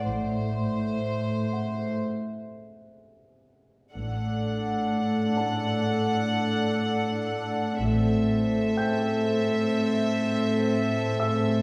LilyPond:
<<
  \new Staff \with { instrumentName = "Grand piano" } { \time 4/4 \key a \dorian \tempo 4 = 62 d'''4. fis''8 r2 | r4. a''2~ a''8~ | a''8 r8 <g'' g'''>2~ <g'' g'''>8 <e'' e'''>8 | }
  \new Staff \with { instrumentName = "Violin section" } { \time 4/4 \key a \dorian c''2 r2 | fis''1 | e''1 | }
  \new Staff \with { instrumentName = "Glass harmonica" } { \time 4/4 \key a \dorian <a' c'' e''>2 r2 | <a' d'' fis''>1 | <a' c'' e''>1 | }
  \new Staff \with { instrumentName = "Viola section" } { \time 4/4 \key a \dorian r1 | <d' a'>1 | <c' a'>1 | }
  \new Staff \with { instrumentName = "Cello section" } { \clef bass \time 4/4 \key a \dorian a,2 r2 | a,1 | a,1 | }
  \new Staff \with { instrumentName = "Double bass section" } { \clef bass \time 4/4 \key a \dorian a,,4 r2. | a,,4 r2. | a,,4 r2. | }
>>